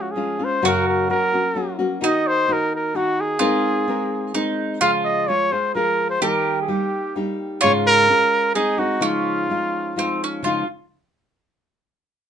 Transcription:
Already playing: nylon-string guitar F3 G#3 C#4 F4, mandolin C#4
0.01 trumpet F#4
0.11 trumpet G#4
0.16 nylon-string guitar F3 G#3 C#4 F4
0.39 nylon-string guitar G#3 C#4 F4
0.44 trumpet C5
0.62 nylon-string guitar F#2 C#3 F#3 A#3 C#4 F#4, mandolin F#4
0.67 trumpet A#4
0.88 trumpet A#4
1.09 nylon-string guitar F#3 A#3 C#4 F#4, trumpet A#4
1.33 nylon-string guitar F#3 A#3 C#4 F#4
1.55 nylon-string guitar F#3 A#3 C#4 F#4
1.79 nylon-string guitar F#3 A#3 C#4 F#4
2.01 nylon-string guitar D#3 A#3 D#4 F#4, mandolin D#4
2.06 trumpet D#5
2.27 trumpet C5
2.48 nylon-string guitar D#3 A#3 D#4 F#4
2.52 trumpet A#4
2.75 trumpet A#4
2.94 nylon-string guitar D#3 A#3 D#4 F#4, trumpet F#4
3.20 trumpet G#4
3.39 nylon-string guitar G#3 C4 D#4 A#4, mandolin F4
3.88 nylon-string guitar G#3 C4 D#4 A#4
4.34 nylon-string guitar G#3 C4 D#4 A#4, mandolin D#4
4.81 nylon-string guitar C#3 F3 G#3 F4 G#4, mandolin F4, trumpet F5
5.05 trumpet D#5
5.28 nylon-string guitar F3 G#3 F4 G#4, trumpet C#5
5.52 nylon-string guitar G#3 F4 G#4, trumpet C5
5.75 nylon-string guitar F3 G#3 F4 G#4, trumpet A#4
6.10 trumpet C5
6.21 nylon-string guitar D#3 G3 A#3 D#4 G4, mandolin G4, trumpet A#4
6.61 trumpet G#4
6.68 nylon-string guitar G3 A#3 D#4 G4, trumpet G4
7.16 nylon-string guitar G3 A#3 D#4 G4
7.61 nylon-string guitar G#2 C#3 G#3 C#4 F4 G#4, mandolin F4, trumpet C#5
7.86 trumpet A#4
8.09 nylon-string guitar G#3 C#4 F4 G#4
8.55 nylon-string guitar G#3 C4 D#4 G#4, mandolin D#4, trumpet G#4
8.78 nylon-string guitar G#3 C4 D#4 G#4, trumpet F#4
9.00 nylon-string guitar C#3 F3 G#3 D#4 F4, mandolin C#4, trumpet F4
9.49 nylon-string guitar F3 G#3 D#4 F4
9.96 nylon-string guitar F3 G#3 D#4 F4, mandolin C4
10.24 mandolin C#4
10.43 nylon-string guitar C#3 F3 G#3 D#4 F4, mandolin F4, trumpet F4

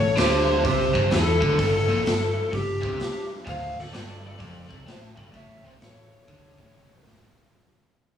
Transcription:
Already playing: lead electric guitar A4 C#5
0.00 picked electric bass A1, overdriven electric guitar A2
0.17 picked electric bass D2, overdriven electric guitar D3, lead electric guitar G4 C5, snare, open hi-hat
0.63 picked electric bass C2, overdriven electric guitar C3, lead electric guitar G4 C5, kick, open hi-hat
0.93 picked electric bass G1, overdriven electric guitar G2, kick
1.11 picked electric bass E2, overdriven electric guitar E3, lead electric guitar E4 A4, snare, open hi-hat
1.41 picked electric bass D2, overdriven electric guitar D3, kick
1.58 picked electric bass G1, overdriven electric guitar G2, kick, open hi-hat
1.88 picked electric bass A#1, overdriven electric guitar A#2
2.05 picked electric bass G1, overdriven electric guitar G2, snare, open hi-hat
2.53 picked electric bass G1, overdriven electric guitar G2, lead electric guitar D4 G4, kick, open hi-hat
2.82 picked electric bass C2, overdriven electric guitar C3, kick
3.00 snare, open hi-hat
3.46 picked electric bass D1, overdriven electric guitar D2, lead electric guitar C5 F5, kick, open hi-hat
3.77 picked electric bass D1, overdriven electric guitar D2, lead electric guitar A4 D5, snare
3.93 picked electric bass G1, overdriven electric guitar G2, lead electric guitar A4 D5, snare, open hi-hat
4.26 lead electric guitar A4 D5
4.38 picked electric bass F1, overdriven electric guitar F2, kick, open hi-hat
4.69 picked electric bass C2, overdriven electric guitar C3, kick
4.86 picked electric bass A1, overdriven electric guitar A2, snare, open hi-hat
4.90 lead electric guitar F#4 C5
5.16 picked electric bass G1, overdriven electric guitar G2, lead electric guitar A4 D5, kick
5.33 picked electric bass A1, overdriven electric guitar A2, lead electric guitar C#5 E5, kick, open hi-hat
5.64 picked electric bass C2, overdriven electric guitar C3, lead electric guitar C5 D5
5.79 picked electric bass A1, overdriven electric guitar A2, lead electric guitar A4 C#5, snare, open hi-hat
6.28 picked electric bass D2, overdriven electric guitar D3, kick, open hi-hat
6.58 picked electric bass A1, overdriven electric guitar A2, kick
6.75 picked electric bass C2, overdriven electric guitar C3, high tom
6.91 mid tom
7.05 picked electric bass A1, overdriven electric guitar A2, snare
7.16 snare

